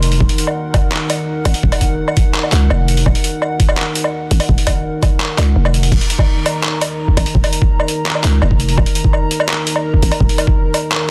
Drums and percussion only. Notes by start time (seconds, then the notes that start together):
0.03 closed hi-hat
0.12 open hi-hat
0.20 kick
0.29 open hi-hat
0.38 closed hi-hat
0.47 low woodblock
0.74 kick, closed hi-hat, low woodblock
0.92 clap
1.10 closed hi-hat, low woodblock
1.45 closed hi-hat, low woodblock
1.54 open hi-hat
1.63 kick
1.72 open hi-hat, low woodblock
1.81 kick, closed hi-hat
2.08 low woodblock
2.17 kick, closed hi-hat
2.35 clap
2.43 low woodblock
2.52 clap, closed hi-hat
2.70 low woodblock
2.88 closed hi-hat
2.97 open hi-hat
3.06 kick, low woodblock
3.15 open hi-hat
3.24 closed hi-hat
3.42 low woodblock
3.60 kick, closed hi-hat
3.69 low woodblock
3.77 clap
3.95 closed hi-hat
4.04 low woodblock
4.31 closed hi-hat
4.40 open hi-hat, low woodblock
4.49 kick
4.58 open hi-hat
4.67 kick, closed hi-hat, low woodblock
5.03 kick, closed hi-hat, low woodblock
5.20 clap
5.38 clap, closed hi-hat, low woodblock
5.65 low woodblock
5.74 closed hi-hat
5.83 open hi-hat
5.92 kick, crash
6.01 open hi-hat
6.10 closed hi-hat
6.19 kick, low woodblock
6.46 closed hi-hat, low woodblock
6.64 clap
6.81 closed hi-hat, low woodblock
7.08 kick
7.17 closed hi-hat, low woodblock
7.26 open hi-hat
7.35 kick
7.44 open hi-hat, low woodblock
7.53 closed hi-hat
7.62 kick
7.80 low woodblock
7.88 closed hi-hat
8.06 clap
8.15 low woodblock
8.24 clap, closed hi-hat
8.42 low woodblock
8.51 kick
8.60 closed hi-hat
8.69 open hi-hat
8.78 kick, low woodblock
8.86 open hi-hat
8.95 closed hi-hat
9.04 kick
9.13 low woodblock
9.31 closed hi-hat
9.40 low woodblock
9.49 clap
9.67 closed hi-hat
9.76 low woodblock
9.94 kick
10.02 closed hi-hat
10.12 open hi-hat, low woodblock
10.20 kick
10.29 open hi-hat
10.38 closed hi-hat, low woodblock
10.47 kick
10.74 closed hi-hat, low woodblock
10.92 clap